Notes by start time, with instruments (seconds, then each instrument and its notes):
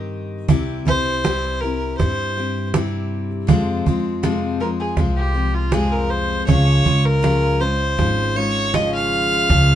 Already playing: upright bass G2, steel-string acoustic guitar D#3 C4 D#4 G4
0.48 upright bass C2, steel-string acoustic guitar C3 G3 C4 E4 G4, cajon bass
0.85 upright bass C2, steel-string acoustic guitar C4 E4 G4, fiddle C5, cajon bass
1.24 steel-string acoustic guitar C3 G3 C4 E4 G4, cajon slap
1.61 steel-string acoustic guitar E4 G4, fiddle A#4, cajon slap
1.65 steel-string acoustic guitar C4
1.97 upright bass G2, steel-string acoustic guitar G3, fiddle C5, cajon bass, cajon slap
2.01 steel-string acoustic guitar C4 E4 G4
2.37 steel-string acoustic guitar C4 E4 G4, cajon slap
2.74 steel-string acoustic guitar C3 G3 C4 E4 G4, cajon slap
3.31 cajon slap
3.47 steel-string acoustic guitar F2 C3 F3 G#3 C4 F4, upright bass F2, cajon bass
3.86 upright bass F2, steel-string acoustic guitar F3 G#3 C4 F4, cajon bass
4.23 steel-string acoustic guitar F2 C3 F3 G#3 C4 F4, cajon slap
4.61 steel-string acoustic guitar F3 G#3 C4 F4, fiddle A#4, cajon slap
4.80 fiddle G#4
4.97 upright bass C2, steel-string acoustic guitar F3 G#3 C4 F4, cajon bass, cajon slap
5.17 fiddle G4
5.34 steel-string acoustic guitar F3 G#3 C4 F4, cajon slap
5.54 fiddle F4
5.72 steel-string acoustic guitar F2 C3 F3 G#3 C4 F4, fiddle G#4, cajon slap
5.92 fiddle A#4
6.10 fiddle C5
6.29 cajon slap
6.47 upright bass C#2, steel-string acoustic guitar C#3 F3 G#3 C#4 F4, fiddle C#5, cajon bass
6.85 steel-string acoustic guitar G#3 C#4 F4, cajon bass
7.05 fiddle A#4
7.23 steel-string acoustic guitar C#3 F3 G#3 C#4 F4, cajon slap
7.60 steel-string acoustic guitar G#3 C#4 F4, fiddle C5, cajon slap
7.97 upright bass G#1, steel-string acoustic guitar F3 G#3 C#4 F4, cajon bass, cajon slap
8.36 steel-string acoustic guitar G#3 C#4 F4, fiddle C#5, cajon slap
8.73 steel-string acoustic guitar C#3 F3 G#3 C#4 F4, fiddle D#5, cajon slap
8.95 fiddle F5
9.49 upright bass C#2, steel-string acoustic guitar C#3 F3 G#3 C#4 F4, cajon bass, cajon slap